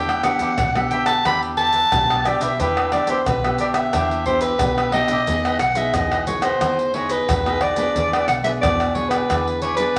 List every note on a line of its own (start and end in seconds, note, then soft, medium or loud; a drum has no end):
0.00 0.34 E2 medium
0.00 0.55 E3 soft
0.00 0.10 B3 medium
0.00 0.11 D4 medium
0.00 0.22 D4 medium
0.00 0.11 G4 medium
0.00 0.23 G4 medium
0.00 0.24 B4 medium
0.00 0.24 E5 medium
0.00 0.23 G5 medium
0.09 pandeiro soft
0.09 tamborim medium
0.09 maracas soft
0.23 0.55 B3 medium
0.23 0.38 D4 medium
0.23 0.55 D4 medium
0.23 0.39 G4 soft
0.23 0.56 G4 medium
0.23 0.39 B4 medium
0.23 0.40 E5 soft
0.23 0.92 F#5 loud
0.23 pandeiro medium
0.23 tamborim medium
0.23 maracas medium
0.39 0.54 E2 medium
0.39 0.49 D4 medium
0.39 0.50 G4 medium
0.39 0.50 B4 medium
0.39 0.50 E5 medium
0.39 pandeiro medium
0.39 maracas medium
0.58 0.87 B1 medium
0.58 pandeiro medium
0.58 tamborim medium
0.58 maracas medium
0.58 surdo loud
0.75 1.20 B3 medium
0.75 1.20 D4 medium
0.75 1.21 G4 medium
0.75 0.90 G4 soft
0.75 0.91 B4 soft
0.75 0.91 E5 soft
0.75 pandeiro soft
0.75 tamborim medium
0.75 maracas soft
0.91 1.06 D4 medium
0.91 1.07 G4 medium
0.91 1.06 B4 medium
0.91 1.05 E5 medium
0.91 1.06 G5 medium
0.91 pandeiro medium
0.91 maracas medium
1.06 1.24 G4 soft
1.06 1.23 B4 soft
1.06 1.22 E5 soft
1.06 1.23 A5 medium
1.06 pandeiro medium
1.06 tamborim medium
1.06 maracas medium
1.25 1.82 E2 medium
1.25 1.89 E3 medium
1.25 1.69 B3 medium
1.25 1.56 D4 medium
1.25 1.69 D4 medium
1.25 1.57 G4 medium
1.25 1.69 G4 medium
1.25 1.58 B4 medium
1.25 1.59 E5 medium
1.25 1.41 B5 loud
1.25 pandeiro medium
1.25 tamborim medium
1.25 maracas medium
1.25 surdo medium
1.42 pandeiro soft
1.42 maracas soft
1.57 1.73 D4 medium
1.57 1.74 G4 soft
1.57 1.73 B4 medium
1.57 1.72 E5 medium
1.57 2.28 A5 loud
1.57 pandeiro medium
1.73 2.08 G4 soft
1.73 2.07 B4 soft
1.73 2.07 E5 soft
1.73 pandeiro medium
1.73 maracas medium
1.92 2.35 B1 medium
1.92 2.56 B2 medium
1.92 2.21 B3 medium
1.92 2.21 D4 medium
1.92 2.21 G4 medium
1.92 pandeiro medium
1.92 tamborim medium
1.92 maracas medium
1.92 surdo loud
2.10 2.24 G4 soft
2.10 2.25 B4 soft
2.10 2.25 E5 soft
2.10 pandeiro soft
2.10 tamborim medium
2.10 maracas soft
2.25 2.69 B3 medium
2.25 2.39 D4 medium
2.25 2.69 D4 medium
2.25 2.39 G4 medium
2.25 2.69 G4 medium
2.25 2.40 B4 medium
2.25 2.43 D5 medium
2.25 2.40 E5 medium
2.25 pandeiro medium
2.25 tamborim medium
2.25 maracas medium
2.40 2.56 B1 medium
2.40 2.51 D4 medium
2.40 2.51 G4 medium
2.40 2.51 B4 medium
2.40 2.51 E5 medium
2.40 2.62 E5 medium
2.40 pandeiro medium
2.40 maracas medium
2.59 3.02 E2 medium
2.59 3.23 E3 medium
2.59 2.91 D4 medium
2.59 2.92 G4 medium
2.59 2.92 B4 medium
2.59 2.93 E5 medium
2.59 pandeiro medium
2.59 maracas medium
2.59 surdo medium
2.77 pandeiro soft
2.77 tamborim medium
2.77 maracas soft
2.92 3.38 B3 medium
2.92 3.06 D4 medium
2.92 3.38 D4 medium
2.92 3.38 G4 medium
2.92 3.07 G4 soft
2.92 3.08 B4 medium
2.92 3.11 D5 medium
2.92 3.08 E5 medium
2.92 pandeiro medium
2.92 tamborim medium
3.07 3.22 E2 medium
3.07 3.18 D4 medium
3.07 3.18 G4 medium
3.07 3.18 B4 medium
3.07 3.26 C5 medium
3.07 3.18 E5 medium
3.07 pandeiro medium
3.07 maracas medium
3.26 3.55 B1 medium
3.26 3.91 B2 medium
3.26 3.59 B4 medium
3.26 pandeiro medium
3.26 tamborim medium
3.26 maracas medium
3.26 surdo medium
3.44 3.89 B3 medium
3.44 3.89 D4 medium
3.44 3.89 G4 medium
3.44 3.58 G4 soft
3.44 3.59 B4 soft
3.44 3.59 E5 soft
3.44 pandeiro soft
3.44 tamborim medium
3.44 maracas soft
3.58 3.75 D4 medium
3.58 3.75 G4 medium
3.58 3.75 B4 medium
3.58 3.68 D5 medium
3.58 3.73 E5 medium
3.58 pandeiro medium
3.58 maracas medium
3.74 3.92 G4 soft
3.74 3.92 B4 soft
3.74 3.91 E5 medium
3.74 4.23 E5 medium
3.74 pandeiro medium
3.74 tamborim medium
3.74 maracas medium
3.93 4.51 E2 medium
3.93 4.58 E3 medium
3.93 4.13 B3 medium
3.93 4.24 D4 medium
3.93 4.14 D4 medium
3.93 4.25 G4 medium
3.93 4.14 G4 medium
3.93 4.26 B4 medium
3.93 4.26 E5 medium
3.93 pandeiro medium
3.93 tamborim medium
3.93 maracas medium
3.93 surdo medium
4.11 pandeiro soft
4.11 maracas soft
4.25 4.55 B3 medium
4.25 4.42 D4 soft
4.25 4.55 D4 medium
4.25 4.42 G4 medium
4.25 4.55 G4 medium
4.25 4.41 B4 soft
4.25 4.41 C5 medium
4.25 4.40 E5 soft
4.25 pandeiro medium
4.25 surdo medium
4.41 4.75 G4 soft
4.41 4.89 B4 medium
4.41 4.75 B4 soft
4.41 4.75 E5 soft
4.41 pandeiro medium
4.41 maracas medium
4.59 5.04 B1 medium
4.59 5.25 B2 medium
4.59 4.89 B3 medium
4.59 4.90 D4 medium
4.59 4.90 G4 medium
4.59 pandeiro medium
4.59 tamborim medium
4.59 maracas medium
4.59 surdo loud
4.77 4.92 G4 soft
4.77 4.93 B4 soft
4.77 4.93 E5 soft
4.77 pandeiro soft
4.77 tamborim medium
4.77 maracas soft
4.92 5.15 B3 soft
4.92 5.08 D4 medium
4.92 5.16 D4 medium
4.92 5.09 G4 medium
4.92 5.16 G4 medium
4.92 5.09 B4 medium
4.92 5.57 D#5 medium
4.92 5.10 E5 medium
4.92 pandeiro medium
4.92 tamborim medium
5.08 5.24 B1 medium
5.08 5.19 D4 medium
5.08 5.19 G4 medium
5.08 5.20 B4 medium
5.08 5.20 E5 medium
5.08 pandeiro medium
5.08 maracas medium
5.27 5.56 E2 medium
5.27 5.91 E3 soft
5.27 5.59 B3 medium
5.27 5.59 D#4 soft
5.27 5.43 E4 soft
5.27 5.60 G#4 medium
5.27 5.44 G#4 soft
5.27 5.44 B4 medium
5.27 5.44 D#5 medium
5.27 pandeiro medium
5.27 maracas medium
5.27 surdo medium
5.45 5.60 G#4 medium
5.45 5.60 B4 medium
5.45 5.60 D#5 medium
5.45 pandeiro soft
5.45 tamborim medium
5.45 maracas soft
5.59 5.89 B1 medium
5.59 5.79 F#5 medium
5.59 muted cavaquinho stroke soft
5.59 pandeiro medium
5.59 tamborim medium
5.59 maracas medium
5.75 6.22 B3 medium
5.75 6.22 D#4 medium
5.75 6.22 G#4 medium
5.75 5.94 G#4 soft
5.75 5.93 B4 medium
5.75 5.92 D#5 medium
5.75 5.96 E5 medium
5.75 pandeiro medium
5.75 maracas medium
5.94 6.52 E2 medium
5.94 6.59 B2 medium
5.94 6.10 E4 soft
5.94 6.11 G#4 soft
5.94 6.11 B4 soft
5.94 6.27 D#5 medium
5.94 6.11 D#5 soft
5.94 pandeiro medium
5.94 tamborim medium
5.94 maracas medium
5.94 surdo medium
6.12 6.44 G#4 soft
6.12 6.43 B4 medium
6.12 6.42 D#5 medium
6.12 pandeiro soft
6.12 tamborim medium
6.12 maracas soft
6.27 6.48 B3 medium
6.27 6.48 D#4 soft
6.27 6.48 G#4 medium
6.27 6.45 C#5 medium
6.27 pandeiro medium
6.27 maracas medium
6.42 6.60 G#4 medium
6.42 6.60 B4 medium
6.42 6.95 C5 medium
6.42 6.59 D#5 medium
6.42 pandeiro medium
6.42 tamborim medium
6.42 maracas medium
6.61 7.18 E2 medium
6.61 7.26 E3 medium
6.61 6.90 B3 medium
6.61 6.90 D#4 medium
6.61 6.77 E4 soft
6.61 6.90 G#4 medium
6.61 6.78 G#4 soft
6.61 6.78 B4 soft
6.61 6.78 D#5 medium
6.61 pandeiro medium
6.61 tamborim medium
6.61 maracas medium
6.61 surdo medium
6.79 muted cavaquinho stroke soft
6.79 pandeiro soft
6.79 maracas soft
6.94 7.26 B3 soft
6.94 7.26 D#4 medium
6.94 7.10 E4 medium
6.94 7.27 G#4 medium
6.94 7.11 G#4 medium
6.94 7.10 B4 medium
6.94 7.12 C#5 medium
6.94 7.09 D#5 medium
6.94 pandeiro medium
7.09 7.45 G#4 medium
7.09 7.63 B4 medium
7.09 7.44 B4 medium
7.09 7.44 D#5 medium
7.09 pandeiro medium
7.09 maracas medium
7.29 7.86 E2 medium
7.29 7.93 B2 medium
7.29 pandeiro medium
7.29 tamborim medium
7.29 maracas medium
7.29 surdo loud
7.46 7.74 B3 medium
7.46 7.75 D#4 medium
7.46 7.75 G#4 medium
7.46 7.61 G#4 medium
7.46 7.62 B4 medium
7.46 7.62 D#5 medium
7.46 pandeiro soft
7.46 tamborim medium
7.46 maracas soft
7.61 7.77 E4 soft
7.61 7.78 G#4 soft
7.61 7.77 B4 soft
7.61 8.27 D5 medium
7.61 7.76 D#5 medium
7.61 pandeiro medium
7.61 tamborim medium
7.76 8.40 B3 medium
7.76 8.40 D4 medium
7.76 8.40 G#4 medium
7.76 7.95 G#4 medium
7.76 7.94 B4 medium
7.76 7.94 D#5 medium
7.76 pandeiro medium
7.76 maracas medium
7.95 8.24 E2 loud
7.95 8.59 E3 medium
7.95 8.12 E4 soft
7.95 8.12 G#4 medium
7.95 8.12 B4 medium
7.95 8.13 D5 medium
7.95 pandeiro medium
7.95 maracas medium
7.95 surdo medium
8.13 8.28 G#4 soft
8.13 8.28 B4 medium
8.13 8.29 D5 medium
8.13 pandeiro soft
8.13 tamborim medium
8.13 maracas soft
8.28 8.57 B1 medium
8.28 8.36 F#5 medium
8.28 muted cavaquinho stroke soft
8.28 pandeiro medium
8.28 tamborim medium
8.28 maracas medium
8.43 8.90 B3 medium
8.43 8.90 D4 medium
8.43 8.90 G#4 medium
8.43 8.61 G#4 medium
8.43 8.61 B4 medium
8.43 8.60 D5 medium
8.43 8.52 E5 medium
8.43 pandeiro medium
8.43 maracas medium
8.61 9.20 E2 medium
8.61 9.27 B2 medium
8.61 8.78 E4 soft
8.61 8.79 G#4 soft
8.61 8.79 B4 soft
8.61 8.96 D5 medium
8.61 8.78 D5 soft
8.61 pandeiro medium
8.61 tamborim medium
8.61 maracas medium
8.61 surdo medium
8.80 9.11 G#4 medium
8.80 9.10 B4 medium
8.80 9.09 D5 medium
8.80 pandeiro soft
8.80 tamborim medium
8.80 maracas soft
8.95 9.24 B3 medium
8.95 9.24 D4 medium
8.95 9.24 G#4 medium
8.95 9.10 C#5 medium
8.95 pandeiro medium
9.09 9.28 G#4 medium
9.09 9.61 B4 medium
9.09 9.28 B4 medium
9.09 9.27 D5 medium
9.09 pandeiro medium
9.09 tamborim medium
9.09 maracas medium
9.29 9.87 E2 loud
9.29 9.94 E3 medium
9.29 9.75 B3 medium
9.29 9.75 D4 medium
9.29 9.45 E4 medium
9.29 9.45 G#4 medium
9.29 9.75 G#4 medium
9.29 9.45 B4 soft
9.29 9.46 D5 soft
9.29 pandeiro medium
9.29 tamborim medium
9.29 maracas medium
9.29 surdo medium
9.48 muted cavaquinho stroke soft
9.48 pandeiro soft
9.48 maracas soft
9.62 9.78 E4 medium
9.62 9.79 G#4 medium
9.62 9.78 B4 medium
9.62 9.76 C#5 medium
9.62 9.77 D5 medium
9.62 pandeiro medium
9.62 maracas medium
9.77 9.99 B3 medium
9.77 9.99 D4 medium
9.77 9.99 G#4 medium
9.77 9.99 B4 medium
9.77 9.99 D5 medium
9.77 pandeiro medium
9.77 maracas medium